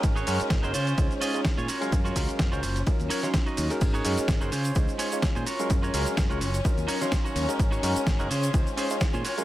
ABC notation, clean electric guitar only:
X:1
M:4/4
L:1/16
Q:"Swing 16ths" 1/4=127
K:Db
V:1 name="Clean electric guitar"
z [EGAd]2 z2 [EGAc] [DFAc]3 z [DFAe]2 z [DFAd] [FGBd]2 | z [FGBd]2 z2 [FGBc]3 z2 [EGBd]2 z [EGBe]2 z | z [EGAd]2 z2 [EGAc] [DFAc]3 z [DFAd]2 z [DFAc] [FGBd]2 | z [FGBd]2 z2 [FGBd]3 z2 [EGBd]2 z [EGBd]2 z |
z [EGAd]2 z2 [EGAB] [DFAc]3 z [DFAc]2 z [DFAc] [FGBd]2 |]